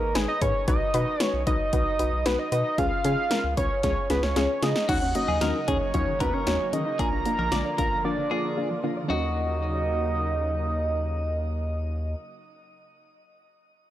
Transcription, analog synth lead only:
Already playing: A#4
0.15 G#4
0.28 D#5
0.41 C#5
0.68 D#5
1.23 C#5
1.47 D#5
2.26 B4
2.39 D#5
2.52 D#5
2.78 F5
3.05 F5
3.57 C#5
3.84 C#5
4.10 B4
4.23 C#5
4.63 D#5
4.89 F#5
5.15 D#5
5.68 C#5
5.94 C#5
6.20 B4
6.34 C#5
6.73 D#5
6.99 A#5
7.78 A#5
8.05 D5
9.10 D#5

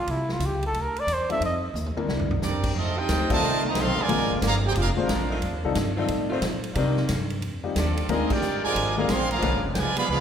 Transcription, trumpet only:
Already playing: F4
0.11 E4
0.33 F4
0.46 G4
0.66 A4
0.81 A#4
1.00 D5
1.13 C5
1.32 E5
1.45 D#5

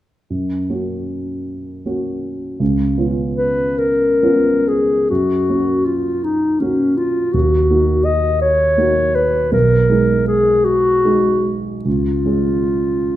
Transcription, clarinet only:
3.36 B4
3.78 A#4
4.68 G#4
5.10 F#4
5.86 F4
6.24 D#4
6.60 C#4
6.97 F4
7.33 F#4
8.05 D#5
8.42 C#5
9.15 B4
9.53 A#4
10.27 G#4
10.65 F#4
11.85 F4

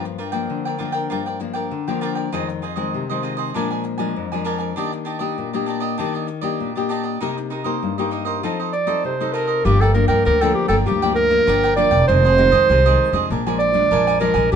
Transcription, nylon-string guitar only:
Already playing: G2 F3 A#3 D4
0.32 F3 A#3 D4
0.50 D3
0.79 F3 A#3 D4
1.11 G2
1.40 F3 A#3 D4
1.71 D3
1.88 F3 A#3 D4
2.33 F2 D#3 G#3 C4
2.76 D#3 G#3 C4
2.94 C3
3.10 D#3 G#3 C4
3.55 A#2 F3 G#3 D4
3.99 F3 G#3 D4
4.16 F2
4.33 F3 G#3 D4
4.77 D#3 A#3 D4 G4
5.20 A#3 D4 G4
5.38 A#2
5.54 A#3 D4 G4
5.99 D#3 A#3 D4 G4
6.42 A#3 D4 G4
6.60 A#2
6.77 A#3 D4 G4
7.21 C3 A#3 D#4 G4
7.64 A#3 D#4 G4
7.83 G2
7.98 A#3 D#4 G4
8.44 F3 C4 D#4 A4
8.87 C4 D#4 A4
9.04 C3
9.20 C4 D#4 A4
9.65 G2 F3 A#3 D4
9.94 F3 A#3 D4
10.26 D3
10.42 F3 A#3 D4
10.69 F3 A#3 D4
10.87 G2
11.03 F3 A#3 D4
11.30 F3 A#3 D4
11.48 D3
11.77 F3 A#3 D4
12.08 F2 D#3 G#3 C4
12.38 D#3 G#3 C4
12.70 C3
12.86 D#3 G#3 C4
13.12 F3 G#3 D4
13.30 A#2
13.46 F3 G#3 D4
13.73 F3 G#3 D4
13.91 F2
14.21 F3 G#3 D4
14.52 D#3

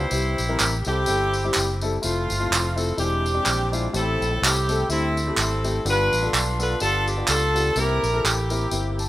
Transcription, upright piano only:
0.11 C3 G3 C4 E4 G4
0.49 G3 C4 E4 A#4
0.86 G3 C4 E4 A4
1.07 G3 C4 E4 A4
1.44 G3 C4 E4 G4
1.82 G3 C4 E4 A4
2.02 A3 C4 E4 F4
2.40 A3 C4 E4 F4
2.76 A3 C4 E4 F4
2.97 E3 G#3 C4 D4 E4
3.34 G#3 C4 D4 G4
3.72 G#3 C4 D4 E4
3.93 A2 A3 C4 E4 G4
4.30 A3 C4 E4 A4
4.68 A3 C4 E4 A4
4.89 A3 C4 E4 G4
5.27 A3 C4 E4 G4
5.64 A3 C4 E4 G4
5.85 G2 B3 D4 F4 G4
6.22 B3 D4 F4 A4
6.59 B3 D4 F4 A4
6.81 B3 D4 F4 G4
7.17 B3 D4 F4 G4
7.55 B3 D4 F4 G4
7.76 C3 A#3 C4 E4 G4
8.13 A#3 C4 E4 A4
8.51 A#3 C4 E4 A#4
8.71 A#3 C4 E4 G4
8.99 A5

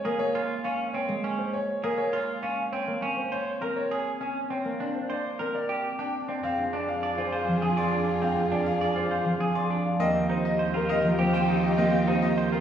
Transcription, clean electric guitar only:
0.05 G#4
0.35 F4
0.65 C#4
0.94 C4
1.24 C#4
1.84 G#4
2.13 F4
2.43 C#4
2.73 C4
3.02 C#4
3.32 C5
3.62 A#4
3.91 G#4
4.21 C#4
4.50 C4
4.80 D4
5.10 C5
5.39 A#4
5.69 G4
5.99 D4
6.28 C4
6.43 C4
6.73 D4
7.03 D5
7.18 F4
7.32 C5
7.62 G#4
7.77 D5
7.92 D4
8.22 C4
8.52 D4
8.81 D5
8.96 F4
9.11 C5
9.40 G#4
9.55 D5
9.70 D4
10.00 C4
10.29 D#4
10.59 C5
10.74 F4
10.89 A#4
11.19 G4
11.33 C5
11.48 D#4
11.78 C4
12.08 D#4
12.38 C5
12.52 F4

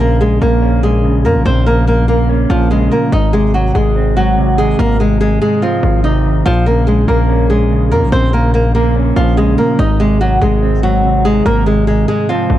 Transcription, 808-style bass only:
Already playing: A#1
0.42 A#1
1.25 F2
1.35 A#1
1.46 A#1
2.50 A#1
3.12 G#1
3.75 G#1
4.79 G#1
5.83 G#1
6.46 A#1
7.08 A#1
7.91 F2
8.02 A#1
8.12 A#1
9.16 A#1
9.79 G#1
10.41 G#1
11.46 G#1
12.50 G#1

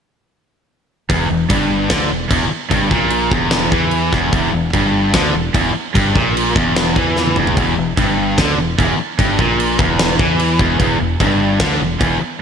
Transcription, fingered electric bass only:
1.10 E1
1.31 E1
1.50 G1
1.90 D2
2.11 E1
2.31 E1
2.52 muted fingered electric bass stroke
2.71 G1
2.91 A#1
3.31 E1
3.72 E2
4.13 E1
4.33 E1
4.53 E1
4.73 G1
5.14 D2
5.35 E1
5.54 E1
5.75 muted fingered electric bass stroke
5.96 G1
6.16 A#1
6.56 E1
6.96 E2
7.37 E1
7.57 E1
7.78 E1
7.97 G1
8.38 D2
8.58 E1
8.79 E1
9.19 G1
9.39 A#1
9.79 E1
10.19 E2
10.59 E1
10.80 E1
11.01 E1
11.20 G1
11.60 D2
11.80 E1
12.01 E1

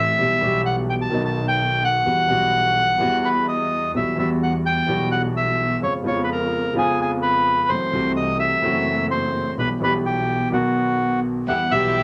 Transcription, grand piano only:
Already playing: A1 A2 E3 A3 C4 F#4
0.18 B1 B2 E3 G3 B3 G4
0.39 B1 B2 E3 G3 B3
0.43 G4
1.09 B1 B2 D#3 F#3 B3
1.14 D#4
2.06 E2 E3 G3 B3 F#4
2.27 B1 B2 E3 G3 B3
2.31 F#4
2.98 E2 E3 G3 B3
3.02 F#4
3.94 B1 B2 E3 G3 B3 F#4
4.15 E2 E3 G3 B3
4.20 F#4
4.86 B1 B2 E3 G3 B3
4.91 F#4
5.81 F2 C#3 F3 G#3 B3 F4
6.02 F2 C#3 F3 G#3 B3
6.06 F4
6.73 F2 C#3 F3 G#3 B3 F4
7.69 F#2 E3 F#3 A3 C4 F#4
7.91 C2 C3 E3 A3 C4 F#4
8.62 F#2 E3 F#3 A3 C4 F#4
9.57 B1 B2 E3 G3 B3 G4
9.79 B1 B2 E3 G3 B3
9.83 G4
10.50 B1 B2 D#3 F#3 B3
10.54 F#4
11.47 E2 E3 G3 B3 G4
11.69 B1 B2 E3 G3 B3 G4

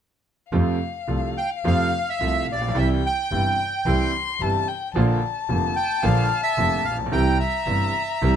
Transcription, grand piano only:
0.52 F2 C3 F3 A3 F4
1.07 C2 C3 F3 A3 F4
1.64 F2 C3 F3 A3 F4
2.21 C2 C3 F3 A3 F4
2.54 A1
2.61 A#1
2.68 B1
2.75 C2 C3 E3 G3 E4
3.31 G1 G2 C3 E3 G3 E4
3.86 C2 C3 E3 G3 E4
4.41 G1 G2 C3 E3 G3 E4
4.95 A#1 A#2 D3 F3 A#3 F4
5.49 F1 F2 D3 F3 A#3 F4
6.03 A#1 A#2 D3 F3 A#3 F4
6.58 F1 F2 D3 F3 A#3 F4
6.91 A1
6.99 A#1
7.06 B1
7.12 C2 C3 E3 G3 E4
7.67 G1 G2 C3 E3 G3 E4
8.22 C2 C3 E3 G3 E4

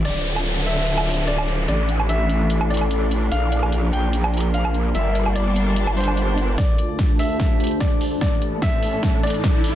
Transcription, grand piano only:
0.05 D5
0.66 E5
1.27 D5
1.68 D5
2.09 E5
2.70 D5
3.32 F5
3.93 G5
4.54 F5
4.95 E5
5.36 D5
5.97 C5
6.58 D5
7.19 E5
7.80 D5
8.21 D5
8.62 E5
9.23 D5

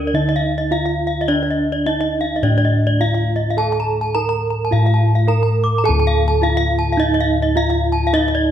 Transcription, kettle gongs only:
Already playing: D2
0.14 D3
0.72 D#4
1.28 D4
1.86 D#4
2.42 A2
3.00 D#4
3.57 A4
4.15 D#4
4.72 A2
5.28 D#4
5.84 A4
5.89 D2
6.42 D#4
7.56 D#4
8.13 D#4

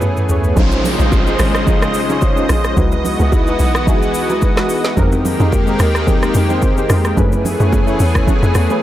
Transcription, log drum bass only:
0.57 A#1
1.00 A#1
1.40 G#1
1.95 A#1
2.50 A#1
2.77 C#2
3.20 C#2
3.60 B1
4.15 C#2
4.70 B1
4.97 F2
5.40 F2
5.80 D#2
6.35 F2
6.90 F2
7.17 F#2
7.60 F#2
8.00 E2
8.43 F2
8.55 E2

